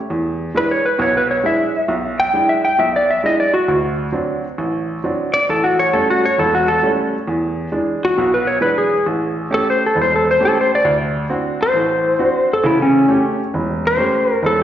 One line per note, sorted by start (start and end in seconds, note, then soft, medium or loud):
0.10 0.49 E2 medium
0.55 0.85 G#3 soft
0.55 0.85 D4 soft
0.55 0.85 E4 medium
0.55 0.70 B4 medium
0.71 0.85 C#5 medium
0.86 0.99 B4 medium
0.98 1.38 B1 medium
0.98 1.38 B2 medium
0.98 1.15 C#5 medium
1.17 1.30 B4 medium
1.31 1.45 C#5 medium
1.43 1.74 G#3 soft
1.43 1.74 D4 soft
1.43 1.75 E4 medium
1.43 1.89 E5 medium
1.88 2.27 B1 medium
2.20 2.48 G5 medium
2.34 2.64 G#3 soft
2.34 2.64 D4 soft
2.34 2.65 E4 medium
2.49 2.64 E5 medium
2.65 2.79 G5 medium
2.79 3.17 B1 medium
2.79 2.94 E5 medium
2.96 3.09 D5 medium
3.11 3.24 E5 medium
3.23 3.54 G#3 soft
3.23 3.54 D4 soft
3.23 3.54 E4 soft
3.23 3.39 D#5 medium
3.40 3.54 D5 medium
3.54 3.77 F#4 medium
3.68 4.07 D2 medium
4.12 4.43 F#3 medium
4.12 4.43 C4 soft
4.12 4.44 D4 medium
4.58 4.97 A1 medium
5.04 5.34 F#3 soft
5.04 5.34 C4 soft
5.04 5.34 D4 medium
5.34 5.48 D5 medium
5.49 5.87 A1 medium
5.49 5.63 A4 medium
5.64 5.78 F#4 medium
5.79 5.93 C#5 medium
5.93 6.23 G3 soft
5.93 6.23 A3 medium
5.93 6.24 C#4 medium
5.93 6.08 A4 medium
6.10 6.24 F#4 medium
6.25 6.39 C#5 medium
6.38 6.77 E1 medium
6.38 6.53 A4 medium
6.55 6.68 F#4 medium
6.68 6.91 A4 medium
6.83 7.13 G3 soft
6.83 7.13 A3 soft
6.83 7.13 C#4 medium
7.28 7.66 E2 medium
7.71 8.02 E3 medium
7.71 8.02 G#3 soft
7.71 8.02 D4 medium
8.05 8.32 F#4 medium
8.17 8.56 B1 medium
8.17 8.56 B2 medium
8.34 8.47 B4 medium
8.47 8.61 C#5 medium
8.60 8.91 E3 soft
8.60 8.91 G#3 soft
8.60 8.92 D4 medium
8.60 8.76 B4 medium
8.78 9.06 G#4 medium
9.06 9.45 A1 medium
9.50 9.81 A3 medium
9.50 9.81 C#4 soft
9.50 9.81 G4 medium
9.50 9.67 A4 loud
9.70 9.82 C5 medium
9.86 9.98 A4 medium
9.95 10.34 E1 medium
10.02 10.13 C5 medium
10.16 10.28 A4 medium
10.31 10.43 C5 medium
10.40 10.70 A3 soft
10.40 10.70 C#4 soft
10.40 10.71 G4 medium
10.45 10.57 A4 medium
10.61 10.73 C5 medium
10.75 10.96 D5 loud
10.85 11.23 D2 medium
11.30 11.60 C4 medium
11.30 11.60 D4 soft
11.30 11.60 F#4 medium
11.63 12.48 C5 loud
11.73 12.13 A1 medium
11.73 12.12 A2 medium
12.19 12.49 C4 medium
12.19 12.50 D4 soft
12.19 12.50 F#4 medium
12.53 12.66 A4 medium
12.64 13.02 A1 medium
12.64 13.02 C#3 medium
12.64 12.79 E4 medium
12.82 13.24 C#4 medium
13.08 13.39 A3 medium
13.08 13.39 C#4 soft
13.08 13.39 G4 medium
13.54 13.92 E1 medium
13.87 14.43 C5 loud
13.97 14.28 A3 soft
13.97 14.28 C#4 soft
13.97 14.28 G4 medium
14.43 14.63 E1 medium
14.43 14.59 A4 loud